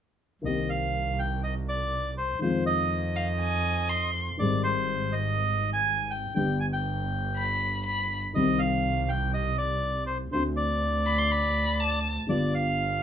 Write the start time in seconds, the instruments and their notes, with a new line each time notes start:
0.42 grand piano C2 C3 D#3 A#3 C4 G4, double bass C2, bandoneon D#5
0.70 bandoneon F5
1.19 bandoneon G5
1.44 bandoneon D#5
1.68 bandoneon D5
2.17 bandoneon C5
2.39 grand piano F2 D#3 F3 G#3 C4, double bass F2, bandoneon C5
2.43 grand piano F4
2.66 bandoneon D#5
3.16 violin F5
3.41 violin G#5
3.90 violin C6
4.37 double bass G#1, grand piano G#1 G#2 D#3 G3 G#3 C4, bandoneon D5
4.63 bandoneon C5
5.12 bandoneon D#5
5.73 bandoneon G#5
6.11 bandoneon G5
6.34 grand piano G1 G2 D3 G3 B3 G4, double bass G1, bandoneon G5
6.60 bandoneon G#5
6.73 bandoneon G5
7.37 violin B5
7.86 violin B5
8.34 grand piano C2 C3 D#3 G3 C4, double bass C2, bandoneon D#5
8.38 grand piano G4
8.59 bandoneon F5
9.09 bandoneon G5
9.34 bandoneon D#5
9.58 bandoneon D5
10.06 bandoneon C5
10.31 grand piano D2 D3 A3 C4 F#4, double bass D2, bandoneon C5
10.57 bandoneon D5
11.06 violin B5
11.18 violin C6
11.32 violin B5
11.80 violin A5
12.27 grand piano G1 G2 D3 G3 B3 F4, double bass G1, bandoneon D5
12.55 bandoneon F5